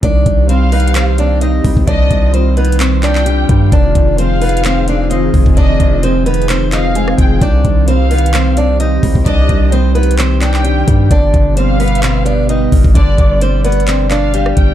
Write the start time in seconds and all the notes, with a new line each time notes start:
0.02 C2 D#3 C4 D4 G4 D5, kick, closed hi-hat
0.26 C2, kick, closed hi-hat
0.49 G3 C4 C5 F5, closed hi-hat
0.72 B3 D#4 B4, closed hi-hat, open hi-hat
0.80 closed hi-hat
0.88 closed hi-hat
0.95 D#3 C4 C5, clap, closed hi-hat
1.18 C4 D4 D5, closed hi-hat
1.41 D#4 D#5, closed hi-hat
1.64 C2 G3, kick, open hi-hat
1.77 C2, kick
1.87 C2 D#3 D4 F4 D5 D#5, kick, closed hi-hat
2.11 C2, kick, closed hi-hat
2.34 G3 C4 C5, closed hi-hat
2.57 B3 D#4 B4, closed hi-hat
2.65 closed hi-hat
2.72 closed hi-hat
2.80 D#3 C4 C5, clap, closed hi-hat
3.03 D4 D5 G5, clap, closed hi-hat
3.15 clap
3.26 G3 D4 G4, closed hi-hat
3.49 G2 G3, kick, closed hi-hat
3.72 F1 D#3 C4 D4 G#4 D5, kick, closed hi-hat
3.95 F1, kick, closed hi-hat
4.18 F3 C4 C5 F5, closed hi-hat
4.41 B3 D#4 B4, closed hi-hat, open hi-hat
4.49 closed hi-hat
4.57 closed hi-hat
4.65 D#3 C4 C5, clap, closed hi-hat
4.87 C4 D4 D5, closed hi-hat
5.10 C4 D#4 D#5, closed hi-hat
5.34 F1 F3, kick, open hi-hat
5.46 F1, kick
5.57 F1 D#3 D4 D5 D#5, kick, closed hi-hat
5.80 F1, kick, closed hi-hat
6.03 F3 C4 C5, closed hi-hat
6.26 B3 D#4 B4, closed hi-hat
6.34 closed hi-hat
6.42 closed hi-hat
6.49 D#3 C4 C5, clap, closed hi-hat
6.72 C4 D#4 D#5 F5, clap, closed hi-hat
6.95 G#3 C4 G#4, closed hi-hat
7.08 cross-stick
7.18 F1 F3 G5, kick, closed hi-hat
7.41 C2 D#3 D4 G4 D5, kick, closed hi-hat
7.65 C2, kick, closed hi-hat
7.88 G3 C4 C5 F5, closed hi-hat
8.11 B3 D#4 B4, closed hi-hat, open hi-hat
8.18 closed hi-hat
8.26 closed hi-hat
8.34 D#3 C4 C5, clap, closed hi-hat
8.57 C4 D4 D5, closed hi-hat
8.80 D#4 D#5, closed hi-hat
9.03 C2 G3, kick, open hi-hat
9.15 C2, kick
9.26 C2 D#3 D4 D5 D#5, kick, closed hi-hat
9.49 C2, kick, closed hi-hat
9.72 G3 C4 C5, closed hi-hat
9.95 B3 D#4 B4, closed hi-hat
10.03 closed hi-hat
10.11 closed hi-hat
10.18 D#3 C4 C5, clap, closed hi-hat
10.41 D4 D5 G5, clap, closed hi-hat
10.54 clap
10.64 G3 D4 G4, closed hi-hat
10.88 G2 G3, kick, closed hi-hat
11.11 G1 B2 D3 G3 B3 D4 D5, kick, closed hi-hat
11.34 G1, kick, closed hi-hat
11.57 G3 C4 C5 F5, closed hi-hat
11.80 B3 B4, closed hi-hat, open hi-hat
11.88 closed hi-hat
11.95 closed hi-hat
12.03 B2 C4 C5, clap, closed hi-hat
12.25 B3 D4 D5, closed hi-hat
12.49 D#4 D#5, closed hi-hat
12.72 G1 G3, kick, open hi-hat
12.84 G1, kick
12.95 G1 D3 D4 D5, kick, closed hi-hat
13.18 G1, kick, closed hi-hat
13.41 G3 C4 C5, closed hi-hat
13.64 B3 B4 D5, closed hi-hat
13.72 closed hi-hat
13.80 closed hi-hat
13.87 D3 C4 C5, clap, closed hi-hat
14.10 D4 D5 F5, clap, closed hi-hat
14.34 G3 D4 G4, closed hi-hat
14.46 cross-stick
14.57 G1 G3 G5, kick, closed hi-hat